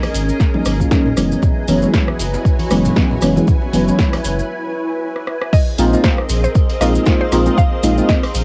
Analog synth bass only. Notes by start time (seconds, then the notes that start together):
0.14 G#1
0.66 G#1
1.17 F#1
1.68 F#1
2.20 F#1
2.71 F#1
3.22 F#1
3.73 F#1
4.25 F#1
5.78 A#1
6.30 A#1
6.81 A#1
7.32 A#1
7.84 A#1
8.35 A#1